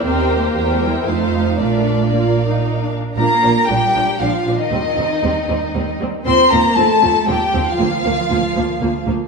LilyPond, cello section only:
\new Staff \with { instrumentName = "Cello section" } { \time 3/4 \key bes \major \tempo 4 = 117 \tuplet 3/2 { c'4 bes8~ bes8 a16 g8. } a4 | a4 bes4 r4 | bes4 g4 f8. ees16~ | ees2~ ees8 r8 |
c'8 bes8 a4 g8. f16~ | f2~ f8 r8 | }